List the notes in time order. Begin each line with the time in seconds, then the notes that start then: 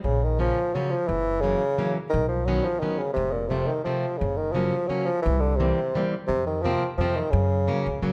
0.04 A#1 C#3
0.24 D#3
0.39 C#3 F3 A#3 C#4
0.74 C#3 F3 F#3 A#3 C#4
0.91 F3
1.07 F#1 E3
1.41 C#3 E3 F#3 A#3 C#4
1.78 E3 F#3 A#3 C#4
2.10 B1 D#3
2.28 F3
2.45 D#3 F#3 B3 C#4
2.64 F3
2.80 D#3 F#3 B3 C#4
2.98 C#3
3.13 F1 C3
3.32 A#2
3.48 C3 F3 A3 C4
3.66 D#3
3.84 C3 F3 A3 C4
4.18 F#1 C#3
4.37 D#3
4.52 C#3 F3 F#3 A#3 C#4
4.87 C#3 F#3 A#3 C#4
5.05 F3
5.22 C2 E3
5.41 D3
5.56 C3 E3 A#3
5.61 G3 C4
5.95 E3 G3 A#3 C4
6.27 F2 C3
6.47 D#3
6.62 C3 F3 A#3 C4
6.98 F2 C3 F3 A3 C4
7.16 D#3
7.31 F#2 C#3
7.67 C#3 F#3 A#3 C#4
7.86 C#2
8.02 C2 C#3 F#3 A#3 C#4